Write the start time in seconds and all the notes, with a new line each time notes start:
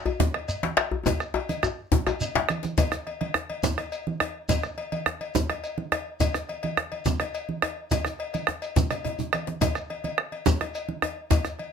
0.06 bombo rim, cowbell, djembe bass
0.20 bombo low, djembe slap, djembe tone, djembe bass, low conga, shekere
0.34 bombo rim, cowbell, high conga
0.48 bombo rim, cowbell, shekere
0.63 djembe slap, high conga, djembe tone
0.77 bombo rim, cowbell, djembe slap, shekere
0.91 bombo rim, djembe bass
1.06 bombo low, cowbell, djembe slap, djembe tone, low conga, djembe bass, shekere
1.20 bombo rim, shekere
1.34 cowbell, djembe tone
1.49 cowbell, djembe slap, high conga, djembe tone, shekere
1.63 bombo rim, djembe tone, high conga, shekere
1.92 bombo low, djembe slap, djembe tone, high conga, djembe bass, low conga, shekere
2.07 bombo rim, cowbell, djembe tone, low conga, shekere
2.21 cowbell, low conga, shekere
2.35 djembe slap, djembe bass, low conga
2.49 bombo rim, cowbell, djembe slap, high conga, shekere
2.63 bombo rim, djembe slap, high conga, shekere
2.78 bombo low, cowbell, djembe slap, djembe bass, low conga, shekere
2.92 bombo rim, djembe slap, djembe tone, shekere
3.07 bombo rim, cowbell, high conga
3.21 bombo rim, cowbell, high conga
3.34 bombo rim, djembe slap, djembe tone
3.50 cowbell, high conga
3.63 bombo low, djembe slap, djembe bass, low conga, shekere
3.78 bombo rim, cowbell, djembe tone, high conga
3.92 cowbell, shekere
4.07 high conga
4.20 bombo rim, cowbell, djembe tone, high conga
4.49 bombo low, cowbell, djembe slap, djembe bass, low conga, shekere
4.63 bombo rim, djembe slap, shekere
4.78 bombo rim, cowbell, high conga
4.92 bombo rim, cowbell, high conga
5.06 bombo rim, djembe slap, djembe tone, high conga
5.21 cowbell, high conga
5.35 bombo low, djembe slap, low conga, djembe bass, shekere
5.50 bombo rim, cowbell, djembe tone, high conga
5.64 cowbell, shekere
5.78 high conga
5.92 bombo rim, cowbell, djembe tone
6.20 bombo low, cowbell, djembe slap, djembe bass, low conga, shekere
6.34 bombo rim, djembe slap, djembe tone, shekere
6.49 bombo rim, cowbell, high conga
6.63 bombo rim, cowbell, high conga
6.77 bombo rim, djembe slap, djembe tone, high conga
6.92 cowbell, high conga
7.05 bombo low, djembe slap, djembe bass, low conga, shekere
7.20 bombo rim, cowbell, djembe tone, high conga
7.34 cowbell, shekere
7.49 high conga
7.62 bombo rim, cowbell, djembe tone, high conga
7.91 bombo low, cowbell, djembe slap, djembe bass, low conga, shekere
8.05 bombo rim, djembe tone, high conga, shekere
8.19 bombo rim, cowbell
8.34 bombo rim, cowbell, djembe slap, high conga, shekere
8.47 bombo rim, djembe slap, djembe tone
8.62 cowbell, djembe slap, shekere
8.76 bombo rim, bombo low, djembe slap, djembe bass, low conga, shekere
8.91 bombo rim, cowbell, djembe slap, djembe tone, low conga, shekere
9.05 cowbell, djembe bass, low conga
9.19 djembe bass, low conga, shekere
9.33 bombo rim, cowbell, djembe slap, high conga, shekere
9.47 djembe slap, high conga
9.61 bombo low, cowbell, djembe slap, djembe bass, low conga, shekere
9.75 bombo rim, djembe slap, shekere
9.90 bombo rim, cowbell, high conga
10.04 bombo rim, cowbell, high conga
10.18 bombo rim, djembe slap, high conga
10.32 cowbell, high conga
10.46 bombo low, djembe slap, low conga, djembe bass, shekere
10.60 bombo rim, cowbell, high conga, djembe tone
10.74 cowbell, shekere
10.89 high conga
11.02 bombo rim, cowbell, djembe tone, high conga
11.31 bombo low, cowbell, djembe slap, low conga, djembe bass, shekere
11.45 bombo rim, djembe slap, djembe tone, shekere
11.59 bombo rim, cowbell, high conga